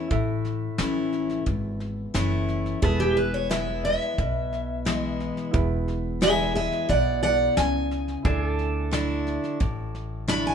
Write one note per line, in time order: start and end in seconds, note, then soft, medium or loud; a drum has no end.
0.00 2.79 A4 medium
0.00 0.42 E5 medium
0.08 0.67 A1 medium
0.08 1.40 A2 medium
0.08 2.77 E4 medium
0.08 2.78 A4 medium
0.08 kick loud
0.08 snare soft
0.12 2.79 E5 medium
0.45 snare soft
0.78 1.37 A1 medium
0.78 1.43 E3 medium
0.78 1.44 A3 medium
0.78 1.44 C#4 medium
0.78 1.44 E4 medium
0.78 snare loud
0.78 hi-hat pedal medium
1.12 snare soft
1.29 snare soft
1.46 2.04 G#1 medium
1.46 2.76 E2 medium
1.46 kick loud
1.46 snare soft
1.80 snare soft
2.14 2.72 F#1 medium
2.14 2.79 E3 medium
2.14 2.79 A3 medium
2.14 2.79 C#4 medium
2.14 2.80 E4 loud
2.14 snare loud
2.14 hi-hat pedal medium
2.48 snare soft
2.66 snare soft
2.80 3.94 E1 medium
2.80 4.11 E2 medium
2.80 5.49 E4 medium
2.80 5.50 G#4 medium
2.80 2.99 G#4 loud
2.80 3.04 A4 medium
2.80 kick loud
2.80 snare soft
2.84 5.51 B4 medium
2.84 8.23 B4 medium
2.84 8.23 E5 medium
3.00 3.16 G4 medium
3.00 8.22 G#4 medium
3.17 3.33 B4 medium
3.17 snare soft
3.34 3.50 C#5 medium
3.50 4.15 E3 medium
3.50 4.15 G#3 medium
3.50 4.15 B3 medium
3.50 4.16 E4 medium
3.50 3.83 E5 medium
3.50 snare loud
3.50 hi-hat pedal medium
3.85 5.84 E5 medium
3.85 snare soft
4.02 snare soft
4.18 5.30 B1 medium
4.18 5.48 B2 medium
4.18 kick loud
4.18 snare soft
4.52 snare soft
4.85 5.50 E3 medium
4.85 5.51 G#3 medium
4.85 5.51 B3 medium
4.85 5.51 E4 medium
4.85 snare loud
4.85 hi-hat pedal medium
5.20 snare soft
5.37 snare soft
5.51 6.66 E1 medium
5.51 6.83 E2 medium
5.51 7.19 E4 medium
5.51 7.20 G#4 medium
5.51 7.21 B4 medium
5.51 kick loud
5.51 snare soft
5.88 snare soft
6.21 6.86 E3 medium
6.21 6.86 G#3 medium
6.21 6.87 B3 medium
6.21 6.87 E4 medium
6.21 6.54 G#4 medium
6.21 6.55 E5 loud
6.21 snare loud
6.21 hi-hat pedal medium
6.55 6.87 G#4 medium
6.55 6.89 E5 medium
6.55 snare soft
6.72 snare soft
6.89 7.47 B1 medium
6.89 7.54 B2 medium
6.89 7.21 D5 medium
6.89 7.22 F#5 medium
6.89 kick medium
6.89 snare soft
7.22 8.21 E4 soft
7.22 8.25 G#4 soft
7.22 8.26 B4 medium
7.22 7.55 D5 medium
7.22 7.57 F#5 loud
7.22 snare soft
7.57 8.16 C#2 medium
7.57 8.22 C#3 medium
7.57 8.89 G#5 loud
7.57 snare loud
7.57 hi-hat pedal medium
7.91 snare soft
8.08 snare soft
8.23 9.37 D2 medium
8.23 8.90 D3 medium
8.23 10.55 E4 medium
8.23 8.45 G#4 medium
8.23 10.55 A4 medium
8.23 10.55 D5 medium
8.23 kick loud
8.23 snare soft
8.27 10.55 E5 medium
8.45 10.55 A4 medium
8.59 snare soft
8.91 9.57 D3 medium
8.91 9.58 A3 medium
8.91 9.58 D4 medium
8.91 9.58 E4 medium
8.91 snare loud
8.91 hi-hat pedal medium
9.27 snare soft
9.44 snare soft
9.60 10.55 A1 medium
9.60 10.55 A2 medium
9.60 kick loud
9.60 snare soft
9.95 snare soft
10.28 10.55 D3 medium
10.28 10.55 A3 medium
10.28 10.55 D4 medium
10.28 10.55 E4 loud
10.28 10.46 B5 loud
10.28 snare loud
10.28 hi-hat pedal medium
10.47 10.55 G#5 medium